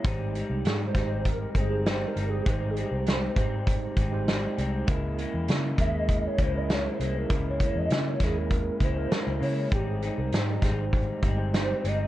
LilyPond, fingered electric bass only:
\new Staff \with { instrumentName = "Fingered electric bass" } { \clef bass \time 4/4 \key aes \major \tempo 4 = 99 aes,,8. c,16 aes,8 aes,,4 g,,4 g,,8 | aes,,8. c,8. aes,4 aes,,4 c,8 | des,8. fes,16 des8 ees,4 des,4 c,8 | des,8. fes,16 des8 ees,4 des,8 r16 des,16 des8 |
aes,,8. c,16 aes,8 aes,,4 g,,4 g,,8 | }